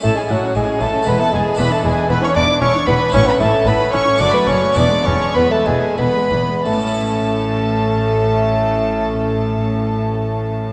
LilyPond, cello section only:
\new Staff \with { instrumentName = "Cello section" } { \clef bass \time 3/4 \key a \major \tempo 4 = 104 a,8 a,8 a,8 a,8 e,8 e,8 | e,8 e,8 e,8 e,8 e,8 e,8 | a,8 a,8 a,8 a,8 fis,8 fis,8 | e,8 e,8 e,8 e,8 e,8 e,8 |
a,2.~ | a,2. | }